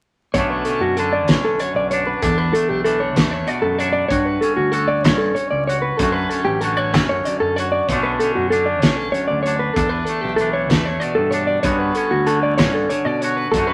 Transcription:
0.34 picked electric bass B1, clean electric guitar B2 D3 A3 C#4 C#5, kick, closed hi-hat
0.39 clean electric guitar D4
0.50 clean electric guitar B4
0.65 clean electric guitar A4, closed hi-hat
0.69 clean electric guitar C#4
0.80 picked electric bass F#2, clean electric guitar F#4
0.97 clean electric guitar D3 D4 A4, closed hi-hat
1.13 clean electric guitar D5
1.28 picked electric bass B1, clean electric guitar C#4 C#5, kick, snare, closed hi-hat
1.45 clean electric guitar A4
1.59 clean electric guitar F#2 C#5, closed hi-hat
1.74 picked electric bass B1, clean electric guitar D5
1.91 clean electric guitar D4 C#5, closed hi-hat
2.07 clean electric guitar B4
2.22 picked electric bass E2, clean electric guitar E2 D4 A4, kick, closed hi-hat
2.38 clean electric guitar B4
2.53 clean electric guitar A3 A4, closed hi-hat
2.69 picked electric bass B1, clean electric guitar G4
2.84 clean electric guitar E3 D4 A4, closed hi-hat
3.00 clean electric guitar C#5
3.16 picked electric bass E2, clean electric guitar A3 B4, kick, snare, closed hi-hat
3.31 clean electric guitar C#5
3.47 clean electric guitar B2 D5, closed hi-hat
3.62 picked electric bass F#2, clean electric guitar A4
3.78 clean electric guitar D4 C#5, closed hi-hat
3.92 clean electric guitar D5
4.08 picked electric bass G2, clean electric guitar G2 F#4 C#5, kick, closed hi-hat
4.26 clean electric guitar B4
4.41 clean electric guitar C#4 A4, closed hi-hat
4.57 picked electric bass D2, clean electric guitar F#4
4.72 clean electric guitar F#4 A4, closed hi-hat
4.88 clean electric guitar D5
5.03 picked electric bass G2, clean electric guitar C#4 C#5, kick, snare, closed hi-hat
5.18 clean electric guitar A4
5.35 clean electric guitar C#5, closed hi-hat
5.50 picked electric bass C#2, clean electric guitar D5
5.67 clean electric guitar F#4 C#5, closed hi-hat
5.82 clean electric guitar B4
5.97 picked electric bass F#2, clean electric guitar F#2 D3 A3 A4, kick, closed hi-hat
6.02 clean electric guitar C#4 F#4
6.12 clean electric guitar B4
6.29 clean electric guitar C#4 A4, closed hi-hat
6.45 picked electric bass A1, clean electric guitar G4
6.61 clean electric guitar D3 F#4 A4, closed hi-hat
6.77 clean electric guitar C#5
6.93 picked electric bass F#2, clean electric guitar C#4 B4, kick, snare, closed hi-hat
7.09 clean electric guitar C#5
7.25 clean electric guitar F#2 D5, closed hi-hat
7.40 picked electric bass F#2, clean electric guitar A4
7.56 clean electric guitar F#4 C#5, closed hi-hat
7.72 clean electric guitar D5
7.87 picked electric bass B1, clean electric guitar B2 D3 C#5, kick, closed hi-hat
7.92 clean electric guitar A3 C#4 D4
8.03 clean electric guitar B4
8.20 clean electric guitar C#4 A4, closed hi-hat
8.35 picked electric bass F#2, clean electric guitar F#4
8.50 clean electric guitar D3 D4 A4, closed hi-hat
8.66 clean electric guitar D5
8.80 picked electric bass B1, clean electric guitar C#4 C#5, kick, snare, closed hi-hat
8.96 clean electric guitar A4
9.12 clean electric guitar F#2 C#5, closed hi-hat
9.27 picked electric bass D2, clean electric guitar D5
9.43 clean electric guitar C#5, closed hi-hat
9.47 clean electric guitar D4
9.59 clean electric guitar B4
9.74 clean electric guitar E2 D4 A4, picked electric bass E2, kick, closed hi-hat
9.89 clean electric guitar B4
10.05 clean electric guitar A4, closed hi-hat
10.09 clean electric guitar A3
10.21 picked electric bass B1, clean electric guitar G4
10.36 clean electric guitar E3 A4, closed hi-hat
10.41 clean electric guitar D4
10.53 clean electric guitar C#5
10.69 picked electric bass E2, clean electric guitar A3 B4, kick, snare, closed hi-hat
10.85 clean electric guitar C#5
11.00 clean electric guitar B2 D5, closed hi-hat
11.15 picked electric bass G2, clean electric guitar A4
11.31 clean electric guitar D4 C#5, closed hi-hat
11.47 clean electric guitar D5
11.63 clean electric guitar G2 D3 B3 C#4 F#4 C#5, picked electric bass G2, kick, closed hi-hat
11.79 clean electric guitar B4
11.95 clean electric guitar C#4 A4, closed hi-hat
12.11 picked electric bass D2, clean electric guitar F#4
12.26 clean electric guitar D3 F#4 A4, closed hi-hat
12.43 clean electric guitar D5
12.57 picked electric bass G2, clean electric guitar C#4 C#5, kick, snare, closed hi-hat
12.74 clean electric guitar A4
12.89 clean electric guitar D3 C#5, closed hi-hat
13.05 picked electric bass B2, clean electric guitar D5
13.21 clean electric guitar F#4 C#5, closed hi-hat
13.36 clean electric guitar B4
13.52 picked electric bass F#2, clean electric guitar F#2 A4, kick, closed hi-hat
13.56 clean electric guitar D3 A3 C#4 F#4
13.67 clean electric guitar B4

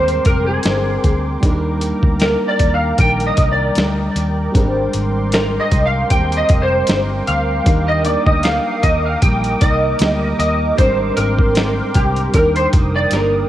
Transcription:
Already playing: fingered electric bass D#2, steel-string acoustic guitar G#2 G3 C4 D4, reed electric piano D3 G#3 C4 A#4, analog synth pad A#4 G5 C6 D6, electric slide guitar C5
0.08 closed hi-hat
0.25 fingered electric bass F1, electric slide guitar A#4, kick, closed hi-hat
0.46 electric slide guitar G#4
0.63 fingered electric bass G1, steel-string acoustic guitar C4, snare, closed hi-hat
0.68 steel-string acoustic guitar D4
1.04 fingered electric bass D2, kick, closed hi-hat
1.41 fingered electric bass D#2, reed electric piano G3 D4 D#4, steel-string acoustic guitar G3, analog synth pad A#4 G5 A#5, kick, closed hi-hat
1.45 steel-string acoustic guitar A#3 D4, reed electric piano A#4
1.81 closed hi-hat
2.03 fingered electric bass D2, kick
2.20 electric slide guitar A#4, snare, closed hi-hat
2.48 electric slide guitar D5
2.59 fingered electric bass D#2, kick, closed hi-hat
2.74 electric slide guitar F5
2.98 fingered electric bass A#1, steel-string acoustic guitar D#3 G3 A#3 D4, electric slide guitar G5, kick, closed hi-hat
3.20 closed hi-hat
3.27 electric slide guitar D#5
3.37 fingered electric bass C2, kick, closed hi-hat
3.52 electric slide guitar D5
3.75 fingered electric bass D2, steel-string acoustic guitar G3 A#3, snare, closed hi-hat
3.80 steel-string acoustic guitar D4
4.16 fingered electric bass D#2, closed hi-hat
4.52 fingered electric bass G#1, steel-string acoustic guitar G#2, reed electric piano G3 C4 D4, analog synth pad A#4 C6 D6, kick, closed hi-hat
4.56 steel-string acoustic guitar G3 C4 D4, reed electric piano A#4
4.93 fingered electric bass G#1, closed hi-hat
5.32 electric slide guitar A#4, snare, closed hi-hat
5.60 electric slide guitar D#5
5.71 fingered electric bass C2, kick, closed hi-hat
5.85 electric slide guitar F5
6.10 fingered electric bass D#2, steel-string acoustic guitar G#2 G3 C4 D4, electric slide guitar G5, kick, closed hi-hat
6.32 closed hi-hat
6.37 electric slide guitar D#5
6.49 fingered electric bass F1, kick, closed hi-hat
6.62 electric slide guitar C5
6.87 fingered electric bass G1, steel-string acoustic guitar G3 C4, snare, closed hi-hat
6.92 steel-string acoustic guitar D4
7.27 fingered electric bass D2, electric slide guitar F5, closed hi-hat
7.64 fingered electric bass D#2, steel-string acoustic guitar D#3 G3 A#3, reed electric piano G3 D4 D#4, analog synth pad D#6, kick, closed hi-hat
7.69 steel-string acoustic guitar D4, reed electric piano A#4
7.88 electric slide guitar D#5
8.04 steel-string acoustic guitar G3 A#3 D4, electric slide guitar D5, closed hi-hat
8.26 fingered electric bass D2, electric slide guitar D#5, kick
8.43 electric slide guitar F5, snare, closed hi-hat
8.83 fingered electric bass D#2, electric slide guitar D#5, kick, closed hi-hat
9.05 electric slide guitar F5
9.21 fingered electric bass A#1, steel-string acoustic guitar D#3 G3 A#3, electric slide guitar G5, kick, closed hi-hat
9.44 closed hi-hat
9.60 fingered electric bass C2, reed electric piano G3 A#3 D#4 A#4, electric slide guitar D#5, kick, closed hi-hat
9.99 fingered electric bass D2, steel-string acoustic guitar G3 A#3, snare, closed hi-hat
10.39 fingered electric bass D#2, electric slide guitar D#5, closed hi-hat
10.75 fingered electric bass G#1, steel-string acoustic guitar G#2 G3, reed electric piano G3 C4 D4, electric slide guitar C5, analog synth pad G5 C6, kick, closed hi-hat
10.81 steel-string acoustic guitar C4 D4, reed electric piano A#4
11.17 fingered electric bass G#1, electric slide guitar A#4, closed hi-hat
11.39 kick
11.55 snare, closed hi-hat
11.94 fingered electric bass C2, electric slide guitar G4, kick, closed hi-hat
12.16 closed hi-hat
12.32 fingered electric bass D#2, steel-string acoustic guitar D#3 G3, reed electric piano G3 D4 D#4, electric slide guitar A#4, analog synth pad D#6, kick, closed hi-hat
12.37 steel-string acoustic guitar A#3 D4, reed electric piano A#4
12.56 electric slide guitar C5, closed hi-hat
12.73 fingered electric bass F1, kick, closed hi-hat
12.96 electric slide guitar D5
13.11 fingered electric bass G1, steel-string acoustic guitar G3 A#3, electric slide guitar A#4, snare, closed hi-hat
13.16 steel-string acoustic guitar D4

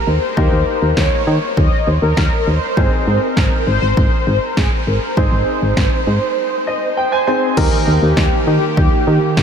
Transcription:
Already playing: grand piano A#3 D#4 G4 A#4
0.07 fm bass D#2, analog polysynth C5
0.37 fm bass D#2, grand piano A#3 D#4 G4 A#4, kick
0.52 fm bass D#2
0.82 fm bass D#2
0.97 fm bass D#2, analog polysynth C#5, kick, snare
1.27 fm bass D#3
1.57 fm bass D#2, analog polysynth D#5, kick
1.87 fm bass D#2, analog polysynth C5
2.02 fm bass D#2, analog polysynth A#4
2.17 fm bass D#2, kick, snare
2.47 fm bass D#2, analog polysynth C5
2.77 fm bass G#1, grand piano C4 D#4 G#4 C5, kick
3.07 fm bass G#2, analog polysynth C5
3.22 analog polysynth A#4
3.37 fm bass G#1, kick, snare
3.67 fm bass G#1, analog polysynth C5
3.82 fm bass G#1
3.97 fm bass G#1, kick
4.27 fm bass G#1, analog polysynth C5
4.42 analog polysynth A#4
4.57 fm bass G#1, analog polysynth G#4, kick, snare
4.87 fm bass G#1, analog polysynth A#4
5.17 fm bass G#1, grand piano C4 D#4 G#4 C5, analog polysynth C5, kick
5.32 fm bass G#1
5.62 fm bass G#1
5.77 fm bass G#1, kick, snare
6.07 fm bass G#2
6.67 grand piano D#5
6.97 analog polysynth C5, grand piano G5
7.12 grand piano G#5
7.27 grand piano C4 D#4 G#4 C5 G#5
7.57 fm bass D#2, analog synth pad D#3 A#3 G4, grand piano A#3 D#4 G4 A#4, analog polysynth A#4, kick, crash
7.87 fm bass D#2
8.02 fm bass D#2, analog polysynth G4
8.17 fm bass D#2, kick, snare
8.47 fm bass D#3, analog polysynth G4
8.77 fm bass D#2, kick
9.07 fm bass D#3
9.37 fm bass D#2, kick, snare

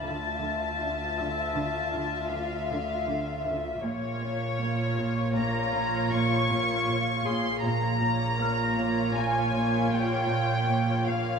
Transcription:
Already playing: harp F4 D5
0.04 double bass section D2, cello section D2 D3, violin section F4 E5 A5
0.42 cello section D3
0.81 cello section D4
1.18 cello section D3, harp E6
1.56 cello section D3
1.94 cello section D3
2.32 cello section D3, violin section F5
2.71 cello section D3
3.09 cello section D3
3.47 cello section D3
3.84 double bass section A#1, cello section A#2, violin section F4 C#5
4.23 cello section A#2
4.61 cello section A#3
4.98 cello section A#2
5.36 cello section A#2, violin section A#5
5.73 cello section A#2
6.12 cello section A#2, violin section C#6
6.50 cello section A#2
6.89 cello section A#2
7.25 cello section A#2, harp G#4, violin section C6
7.63 double bass section A#1, cello section A#2, violin section F4 C#5 A#5
8.01 cello section A#2
8.40 cello section A#3, harp F6
8.78 cello section A#2
9.15 cello section A#2, violin section G#5
9.54 cello section A#2
9.92 cello section A#2, violin section G5
10.30 cello section A#2
10.68 cello section A#2
11.06 cello section A#2, violin section F5

